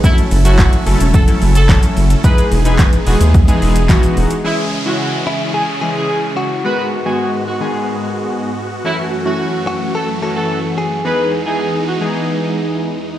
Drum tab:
HH |-xox-xox-xox-xox|-xox-xox-xox-xox|----------------|----------------|
SH |xxxxxxxxxxxxxxxx|xxxxxxxxxxxxxxxx|----------------|----------------|
CP |----x-------x---|----x-------x---|----------------|----------------|
SD |----o-------o---|----o-------o---|----------------|----------------|
BD |o---o---o---o---|o---o---o---o---|----------------|----------------|

HH |----------------|----------------|
SH |----------------|----------------|
CP |----------------|----------------|
SD |----------------|----------------|
BD |----------------|----------------|